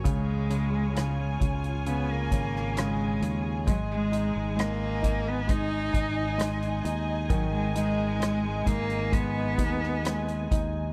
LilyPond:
<<
  \new Staff \with { instrumentName = "String section" } { \time 4/4 \key aes \dorian \tempo 4 = 66 << { <f' des'' aes''>1 | <ees' ees'' aes''>1~ | <ees' ees'' aes''>1 | } \\ { aes'1~ | aes'1~ | aes'1 | } >> }
  \new Staff \with { instrumentName = "Cello" } { \time 4/4 \key aes \dorian aes4. r8 ces'16 bes8. aes8. r16 | ges16 aes8. bes8. ces'16 ees'4. r8 | ges16 aes16 aes4 bes8 ces'4. r8 | }
  \new Staff \with { instrumentName = "Grand piano" } { \clef bass \time 4/4 \key aes \dorian des8 des8 des8 des8 des8 des8 des8 des8 | aes8 ees'8 aes8 ees'8 aes8 ees'8 aes8 ees'8 | ees8 ees'8 aes8 ees'8 aes8 ees'8 aes8 ees'8 | }
  \new Staff \with { instrumentName = "Fretless electric bass" } { \clef bass \time 4/4 \key aes \dorian des,4. des,4 aes,,4 ees,8 | aes,,8. aes,,4.~ aes,,16 aes,,4 ees,8 | aes,,4. aes,,4 ees,4 ees,8 | }
  \new DrumStaff \with { instrumentName = "Drums" } \drummode { \time 4/4 <hh bd>8 hh8 <hh ss>8 <hh bd>16 hh16 hh8 <hh bd>16 ss16 <hh ss>8 hh8 | <hh bd>8 hh8 <hh ss>8 <hh bd>8 <hh bd>8 <hh bd>8 <hh ss>16 hh16 hh8 | <hh bd>8 hh8 <hh ss>8 <hh bd>16 hh16 <hh bd>8 <hh bd>16 ss16 <hh ss>16 hh16 <hh bd>8 | }
>>